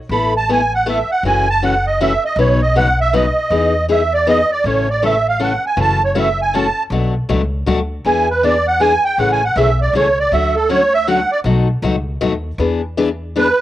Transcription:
0.09 upright bass A1, steel-string acoustic guitar A3 B3 E4 A4, accordion B5
0.37 accordion A5
0.49 steel-string acoustic guitar A3 B3 E4 A4, accordion G#5
0.75 accordion F#5
0.86 steel-string acoustic guitar A3 B3 E4 A4, accordion E5
1.12 accordion F#5
1.23 upright bass F#1, steel-string acoustic guitar C#3 E3 A3 C#4 F#4, accordion G#5
1.50 accordion A5
1.62 steel-string acoustic guitar C#3 E3 A3 C#4 F#4, accordion F#5
1.87 accordion D#5
2.00 steel-string acoustic guitar C#3 E3 A3 C#4 F#4, accordion E5
2.25 accordion D#5
2.36 upright bass B1, steel-string acoustic guitar B2 C#3 F#3 B3 D#4 B4, accordion C#5
2.62 accordion D#5
2.75 steel-string acoustic guitar B2 C#3 F#3 B3 D#4 B4, accordion F#5
3.01 accordion E5
3.13 steel-string acoustic guitar B2 C#3 F#3 B3 D#4 B4, accordion D#5
3.50 upright bass E2, steel-string acoustic guitar E3 B3 D#4 G#4
3.89 steel-string acoustic guitar E3 B3 D#4 G#4, accordion E5
4.14 accordion D5
4.27 steel-string acoustic guitar E3 B3 D#4 G#4, accordion D#5
4.52 accordion D5
4.64 upright bass A1, steel-string acoustic guitar C#3 E3 A3 C#4 A4, accordion C#5
4.90 accordion D5
5.02 steel-string acoustic guitar C#3 E3 A3 C#4 A4, accordion E5
5.28 accordion F5
5.39 steel-string acoustic guitar C#3 E3 A3 C#4 A4, accordion F#5
5.66 accordion G#5
5.77 upright bass F#1, steel-string acoustic guitar C#3 E3 A3 C#4 F#4
5.81 accordion A5
6.04 accordion C#5
6.15 steel-string acoustic guitar C#3 E3 A3 C#4 F#4, accordion E5
6.42 accordion G#5
6.54 steel-string acoustic guitar C#3 E3 A3 C#4 F#4, accordion A5
6.90 upright bass B1, steel-string acoustic guitar B2 F#3 A3 D4 F#4
7.29 upright bass C#2, steel-string acoustic guitar B2 F#3 A3 D4 F#4
7.66 upright bass D2, steel-string acoustic guitar B2 F#3 A3 D4 F#4
8.05 upright bass E2, steel-string acoustic guitar E3 B3 D4 G#4, accordion G#5
8.31 accordion B4
8.43 steel-string acoustic guitar E3 B3 D4 G#4, accordion D5
8.68 accordion F#5
8.80 steel-string acoustic guitar E3 B3 D4 G#4, accordion G#5
9.05 accordion G5
9.18 upright bass A1, steel-string acoustic guitar C#3 E3 A3 C#4 G#4, accordion F#5
9.32 accordion G#5
9.45 accordion F#5
9.56 upright bass B1, steel-string acoustic guitar C#3 E3 A3 C#4 G#4, accordion E5
9.81 accordion D5
9.93 upright bass C#2, steel-string acoustic guitar C#3 E3 A3 C#4 G#4, accordion C#5
10.19 accordion D5
10.32 upright bass D2, steel-string acoustic guitar D3 F#3 A3 C#4 F#4, accordion E5
10.56 accordion A4
10.69 steel-string acoustic guitar D3 F#3 A3 C#4 F#4, accordion C#5
10.94 accordion E5
11.07 steel-string acoustic guitar D3 F#3 A3 C#4 F#4, accordion F#5
11.32 accordion D5
11.44 upright bass B1, steel-string acoustic guitar B2 F#3 A3 D#4 F#4
11.82 upright bass C#2, steel-string acoustic guitar B2 F#3 A3 D#4 F#4
12.21 upright bass D#2, steel-string acoustic guitar B2 F#3 A3 D#4 F#4
12.58 upright bass E2, steel-string acoustic guitar E3 B3 D4 G#4
12.97 steel-string acoustic guitar E3 B3 D4 G#4
13.36 steel-string acoustic guitar E3 B3 D4 G#4, accordion B4

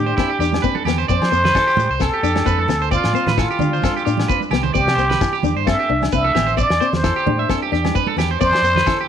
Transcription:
Already playing: fingered electric bass A2, steel-string acoustic guitar D4, muted trumpet G4
0.06 clean electric guitar C5
0.17 steel-string acoustic guitar C4, clean electric guitar E4, kick, snare, low agogo, shekere
0.30 clean electric guitar G4
0.39 fingered electric bass E2, steel-string acoustic guitar D4, clean electric guitar G4, snare, shekere
0.53 snare, high conga, low agogo
0.62 steel-string acoustic guitar C4, clean electric guitar B4, kick, shekere
0.75 clean electric guitar A4, high conga
0.85 fingered electric bass E2, steel-string acoustic guitar B3, clean electric guitar G4, snare, low conga, low agogo, shekere
0.98 clean electric guitar C5, shekere
1.08 fingered electric bass F2, steel-string acoustic guitar C4, muted trumpet C5, clean electric guitar D5, kick, shekere
1.21 fingered electric bass F3, snare, low agogo, shekere
1.31 fingered electric bass F2, steel-string acoustic guitar C4, clean electric guitar C5, shekere
1.44 clean electric guitar B4, snare, low conga
1.55 steel-string acoustic guitar E4, clean electric guitar A4, kick, snare, low agogo, shekere
1.67 clean electric guitar G4, shekere
1.77 fingered electric bass A2, high conga, low conga, shekere
1.89 fingered electric bass C2, clean electric guitar C5
2.00 steel-string acoustic guitar C4, clean electric guitar A4, muted trumpet A4, kick, snare, low agogo, shekere
2.14 clean electric guitar G4
2.23 fingered electric bass F2, steel-string acoustic guitar D4, clean electric guitar G4, shekere
2.36 snare, high conga, low agogo, shekere
2.46 fingered electric bass F2, steel-string acoustic guitar C4, clean electric guitar B4, kick, shekere
2.58 clean electric guitar A4, high conga
2.68 fingered electric bass D2, steel-string acoustic guitar B3, muted clean electric guitar stroke, snare, low conga, low agogo, shekere
2.82 clean electric guitar C5, shekere
2.91 steel-string acoustic guitar C4, muted trumpet F4, clean electric guitar D5, kick, shekere
3.04 fingered electric bass A2, snare, low agogo
3.13 steel-string acoustic guitar C4, clean electric guitar C5, high conga, shekere
3.27 fingered electric bass A2, clean electric guitar B4, snare, low conga, shekere
3.37 steel-string acoustic guitar E4, muted trumpet F4, clean electric guitar A4, kick, snare, low agogo, shekere
3.51 clean electric guitar G4, shekere
3.59 fingered electric bass D3, steel-string acoustic guitar D4, high conga, low conga, shekere
3.73 clean electric guitar C5, shekere
3.82 steel-string acoustic guitar C4, clean electric guitar A4, kick, snare, high conga, low agogo, shekere
3.96 clean electric guitar G4, shekere
4.05 fingered electric bass A2, steel-string acoustic guitar D4, clean electric guitar G4, shekere
4.17 snare, high conga, low agogo
4.28 steel-string acoustic guitar C4, clean electric guitar B4, kick, shekere
4.40 high conga, shekere
4.50 fingered electric bass C2, steel-string acoustic guitar B3, clean electric guitar G4, snare, low conga, low agogo
4.63 clean electric guitar C5, low conga, shekere
4.74 fingered electric bass C2, steel-string acoustic guitar C4, muted trumpet G4, clean electric guitar D5, kick, shekere
4.87 fingered electric bass C3, snare, low agogo, shekere
4.95 fingered electric bass C2, steel-string acoustic guitar C4, clean electric guitar C5, shekere
5.09 clean electric guitar B4, snare, low conga
5.21 steel-string acoustic guitar E4, kick, snare, low agogo, shekere
5.33 clean electric guitar G4, shekere
5.43 fingered electric bass E2, steel-string acoustic guitar D4, high conga, low conga, shekere
5.56 fingered electric bass G2, clean electric guitar C5
5.67 steel-string acoustic guitar C4, clean electric guitar A4, muted trumpet E5, kick, snare, low agogo, shekere
5.80 clean electric guitar G4
5.89 fingered electric bass C2, steel-string acoustic guitar D4
6.02 snare, high conga, low agogo, shekere
6.12 fingered electric bass C2, steel-string acoustic guitar C4, clean electric guitar B4, muted trumpet E5, kick, shekere
6.24 clean electric guitar A4, high conga
6.35 fingered electric bass A1, steel-string acoustic guitar B3, clean electric guitar G4, snare, low conga, low agogo, shekere
6.46 clean electric guitar C5, shekere
6.57 steel-string acoustic guitar C4, clean electric guitar D5, muted trumpet D5, kick, shekere
6.70 fingered electric bass E2, snare, low agogo, shekere
6.80 steel-string acoustic guitar C4, clean electric guitar C5, shekere
6.93 fingered electric bass E2, muted trumpet C5, snare, low conga
7.03 steel-string acoustic guitar E4, clean electric guitar A4, kick, snare, low agogo, shekere
7.16 clean electric guitar G4, shekere
7.26 fingered electric bass A2, steel-string acoustic guitar D4, high conga, low conga
7.39 clean electric guitar E5
7.49 steel-string acoustic guitar C4, clean electric guitar A4, kick, snare, low agogo, shekere
7.62 clean electric guitar G4
7.72 fingered electric bass E2, steel-string acoustic guitar D4, clean electric guitar G4, snare
7.85 snare, high conga, low agogo, shekere
7.95 steel-string acoustic guitar C4, clean electric guitar B4, kick, shekere
8.07 clean electric guitar A4, high conga
8.17 fingered electric bass E2, steel-string acoustic guitar B3, clean electric guitar G4, snare, low conga, low agogo, shekere
8.31 clean electric guitar C5
8.41 fingered electric bass F2, steel-string acoustic guitar C4, muted trumpet C5, clean electric guitar D5, kick, shekere
8.52 fingered electric bass F3, snare, low agogo, shekere
8.62 fingered electric bass F2, steel-string acoustic guitar C4, clean electric guitar C5, shekere
8.75 clean electric guitar B4, snare, low conga
8.86 steel-string acoustic guitar E4, clean electric guitar A4, kick, snare, low agogo, shekere
8.99 clean electric guitar G4, shekere

